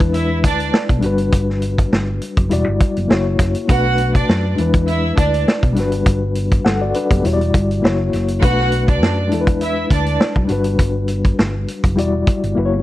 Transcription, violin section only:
0.14 0.37 E4 medium
0.14 0.38 E5 medium
0.44 0.68 D4 medium
0.44 0.68 D5 loud
3.69 4.12 F#4 loud
3.69 4.12 F#5 loud
4.15 4.56 D4 medium
4.15 4.55 D5 medium
4.87 5.11 E4 medium
4.87 5.11 E5 medium
5.17 5.40 D4 medium
5.17 5.41 D5 loud
8.42 8.85 F#4 loud
8.42 8.85 F#5 loud
8.89 9.29 D4 medium
8.89 9.29 D5 medium
9.61 9.85 E4 medium
9.61 9.85 E5 medium
9.91 10.14 D4 medium
9.91 10.14 D5 loud

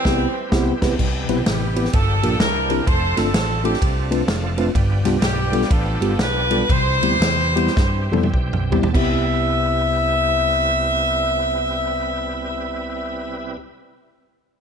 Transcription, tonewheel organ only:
0.00 0.95 E3 medium
0.00 0.96 G3 medium
0.00 0.95 C4 medium
0.00 0.95 G4 medium
0.00 0.95 B4 medium
0.98 1.91 C3 medium
0.98 1.91 E3 medium
0.98 1.91 G3 medium
0.98 1.91 B3 medium
0.98 1.91 G4 medium
1.92 2.40 F3 medium
1.92 2.40 G3 medium
1.92 2.00 A3 soft
1.92 2.39 D4 medium
1.92 2.39 G4 medium
1.99 2.39 A#3 medium
2.40 2.87 E3 medium
2.40 2.87 A#3 medium
2.40 2.85 C4 medium
2.40 2.85 D4 medium
2.40 2.87 G4 medium
2.86 4.71 F3 medium
2.86 4.71 A3 medium
2.86 4.71 C4 medium
2.86 4.71 D4 medium
2.86 4.71 A4 medium
4.27 4.71 F5 medium
4.75 6.66 F3 medium
4.75 6.66 G3 medium
4.75 6.66 B3 medium
4.75 6.66 D4 medium
4.75 6.66 G4 medium
6.69 8.90 E3 medium
6.69 8.91 G3 medium
6.69 8.91 C4 medium
6.69 8.91 G4 medium
8.12 8.14 D5 medium
8.12 8.32 E5 medium
8.33 8.71 G5 medium
8.73 8.93 A5 medium
8.94 13.57 C3 medium
8.94 13.57 G3 medium
8.94 13.57 E4 medium
8.94 13.57 B4 medium

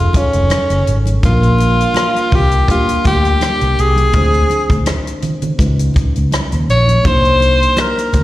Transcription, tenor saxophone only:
0.00 0.18 F4 medium
0.17 0.98 C#4 medium
1.25 2.36 F4 medium
2.35 2.70 G4 medium
2.71 3.04 F4 medium
3.07 3.82 G4 loud
3.80 4.88 G#4 loud
6.70 7.08 C#5 loud
7.07 7.82 C5 loud
7.81 8.23 A#4 medium

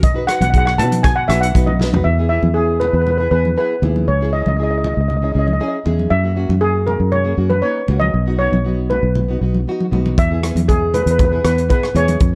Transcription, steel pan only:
0.03 0.15 D#5 medium
0.27 0.34 F#5 medium
0.35 0.41 F#5 medium
0.42 0.49 F#5 medium
0.50 0.57 F#5 medium
0.58 0.64 F#5 medium
0.65 0.72 F#5 medium
0.78 1.04 A5 loud
1.03 1.15 G#5 loud
1.16 1.29 F#5 medium
1.28 1.41 E5 medium
1.41 1.65 F#5 medium
1.66 1.90 D#5 medium
2.04 2.28 E5 medium
2.29 2.41 E5 medium
2.54 2.81 G#4 medium
2.80 2.86 B4 medium
2.88 2.93 B4 medium
2.95 3.00 B4 medium
3.02 3.09 B4 medium
3.10 3.17 B4 medium
3.18 3.26 B4 medium
3.31 3.56 B4 medium
3.58 4.10 B4 medium
4.08 4.19 C#5 medium
4.33 4.40 D#5 medium
4.42 4.47 D#5 medium
4.48 4.55 D#5 medium
4.57 4.62 D#5 soft
4.63 4.70 D#5 medium
4.71 4.77 D#5 medium
4.78 4.85 D#5 medium
4.86 4.93 D#5 medium
4.94 5.00 D#5 soft
5.01 5.07 D#5 soft
5.08 5.15 D#5 medium
5.17 5.23 D#5 soft
5.24 5.31 D#5 medium
5.32 5.38 D#5 soft
5.39 5.46 D#5 medium
5.47 5.52 D#5 medium
5.53 5.60 D#5 medium
5.61 5.67 D#5 medium
5.68 5.75 D#5 medium
6.10 6.63 E5 medium
6.61 6.87 G#4 loud
6.87 6.98 A#4 medium
7.12 7.48 C#5 medium
7.50 7.62 B4 medium
7.62 8.02 C#5 medium
8.00 8.40 D#5 medium
8.39 8.91 C#5 medium
8.90 9.88 B4 medium
10.19 10.70 E5 medium
10.68 10.94 G#4 medium
10.94 11.01 B4 medium
11.02 11.09 B4 medium
11.11 11.17 B4 medium
11.19 11.24 B4 medium
11.25 11.31 B4 medium
11.32 11.39 B4 medium
11.45 11.56 B4 medium
11.70 11.96 B4 medium
11.96 12.35 C#5 medium

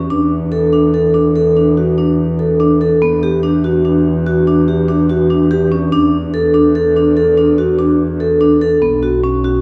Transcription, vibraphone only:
0.10 0.33 D4 medium
0.52 0.63 A4 medium
0.73 0.84 D4 medium
0.94 1.05 A4 medium
1.14 1.26 D4 medium
1.36 1.47 A4 medium
1.57 1.68 D4 medium
1.77 1.88 F#4 medium
1.98 2.20 D4 medium
2.39 2.50 A4 medium
2.60 2.71 D4 medium
2.81 2.92 A4 medium
3.02 3.13 B3 medium
3.23 3.34 G4 medium
3.43 3.54 D4 medium
3.64 3.75 F#4 medium
3.85 4.07 D4 medium
4.26 4.38 F#4 medium
4.47 4.58 D4 medium
4.68 4.79 G4 medium
4.88 5.00 D4 medium
5.09 5.21 F#4 medium
5.30 5.41 D4 medium
5.51 5.62 G4 medium
5.72 5.83 C#4 medium
5.92 6.15 D4 medium
6.34 6.45 A4 medium
6.54 6.66 D4 medium
6.75 6.87 A4 medium
6.96 7.07 D4 medium
7.17 7.28 A4 medium
7.37 7.49 D4 medium
7.58 7.69 F#4 medium
7.79 8.01 D4 medium
8.20 8.32 A4 medium
8.41 8.52 D4 medium
8.61 8.73 A4 medium
8.82 8.93 B3 medium
9.03 9.14 F#4 medium
9.24 9.35 C#4 medium
9.44 9.56 F#4 medium

